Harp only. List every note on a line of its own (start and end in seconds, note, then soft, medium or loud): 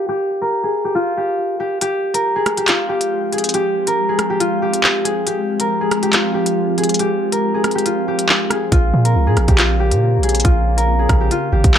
0.00 0.95 F4 medium
0.00 0.41 A#4 medium
0.09 0.70 G4 loud
0.42 2.14 A#4 medium
0.64 0.91 G#4 medium
0.85 1.17 G4 medium
0.95 2.68 F4 medium
1.17 1.59 G4 medium
1.60 1.81 G4 medium
1.82 2.42 G4 medium
2.14 3.87 A#4 medium
2.36 2.64 G#4 medium
2.58 2.89 G4 medium
2.68 4.40 F4 medium
2.89 3.39 G4 medium
3.33 3.60 G#4 medium
3.54 4.15 G4 loud
3.88 5.60 A#4 medium
4.09 4.36 G#4 medium
4.30 4.62 G4 medium
4.40 6.13 F4 medium
4.62 5.10 G4 medium
5.04 5.33 G#4 medium
5.27 5.87 G4 medium
5.60 7.32 A#4 medium
5.81 6.09 G#4 medium
6.03 6.34 G4 medium
6.14 7.85 F4 medium
6.34 6.84 G4 medium
6.78 7.06 G#4 medium
7.00 7.60 G4 loud
7.32 9.04 A#4 medium
7.54 7.81 G#4 medium
7.75 8.08 G4 medium
7.86 8.72 F4 medium
8.08 8.57 G4 medium
8.51 9.26 G#4 medium
8.72 9.58 F4 medium
9.05 10.77 A#4 medium
9.27 9.55 G#4 medium
9.49 9.79 G4 medium
9.59 10.44 F4 medium
9.80 10.29 G4 medium
10.23 10.99 G#4 medium
10.44 11.31 F4 medium
10.77 11.79 A#4 medium
10.99 11.27 G#4 medium
11.21 11.52 G4 medium
11.31 11.79 F4 medium
11.52 11.79 G4 medium